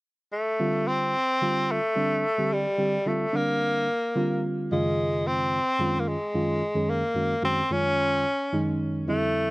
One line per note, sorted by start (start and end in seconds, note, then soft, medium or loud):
0.32 0.89 A3 medium
0.60 1.14 D3 medium
0.60 1.14 G3 medium
0.60 1.14 C4 medium
0.60 1.14 F4 medium
0.88 1.73 C4 loud
1.41 1.78 D3 medium
1.41 1.78 G3 medium
1.41 1.78 C4 medium
1.41 1.78 F4 medium
1.71 2.55 A3 medium
1.96 2.23 D3 medium
1.96 2.23 G3 medium
1.96 2.24 C4 medium
1.96 2.24 D4 medium
2.38 2.65 D3 medium
2.38 2.65 G3 medium
2.38 2.65 C4 medium
2.38 2.66 G4 medium
2.53 3.09 G3 medium
2.78 2.97 D3 medium
2.78 2.97 G3 medium
2.78 2.97 C4 soft
2.78 2.97 G4 medium
3.06 3.24 D3 medium
3.06 3.25 G3 medium
3.06 3.38 A3 medium
3.06 3.25 C4 medium
3.06 3.25 F4 medium
3.33 3.87 D3 medium
3.33 3.87 G3 soft
3.33 4.45 A#3 medium
3.33 3.87 C4 medium
3.33 3.87 D4 medium
4.16 4.70 D3 medium
4.16 4.70 G3 medium
4.16 4.70 C4 medium
4.16 4.70 F4 medium
4.72 5.59 F#2 medium
4.72 5.59 C#3 medium
4.72 5.59 D#3 medium
4.72 5.59 G#3 medium
4.72 5.29 G#3 medium
4.72 5.59 F4 medium
5.27 6.02 C4 medium
5.79 6.15 F#2 medium
5.79 6.15 D#3 medium
5.79 6.16 G#3 medium
5.79 6.16 C#4 medium
5.79 6.16 F4 medium
6.00 6.10 A#3 medium
6.08 6.92 G#3 medium
6.34 6.61 F#2 medium
6.34 6.61 D#3 medium
6.34 6.61 G#3 medium
6.34 6.62 C#4 medium
6.34 6.62 F4 medium
6.75 7.02 F#2 medium
6.75 7.02 D#3 medium
6.75 7.02 G#3 medium
6.75 7.02 C#4 medium
6.75 7.03 G#4 medium
6.90 7.44 A#3 medium
7.15 7.33 F#2 medium
7.15 7.34 D#3 soft
7.15 7.34 G#3 medium
7.15 7.34 C#4 medium
7.15 7.34 F#4 medium
7.42 7.61 F#2 medium
7.42 7.61 D#3 medium
7.42 7.61 G#3 medium
7.42 7.74 C4 medium
7.42 7.61 C#4 medium
7.42 7.61 F#4 medium
7.70 8.24 F#2 medium
7.70 8.24 D#3 medium
7.70 8.25 G#3 medium
7.70 8.24 C#4 medium
7.70 8.81 C#4 medium
7.70 8.25 F4 medium
8.53 9.07 F#2 medium
8.53 9.07 D#3 medium
8.53 9.07 G#3 medium
8.53 9.07 C#4 medium
8.53 9.07 D#4 medium
9.07 9.51 F2 medium
9.07 9.51 D3 medium
9.07 9.51 G3 medium
9.07 9.51 A3 medium
9.07 9.51 C4 medium
9.07 9.51 E4 medium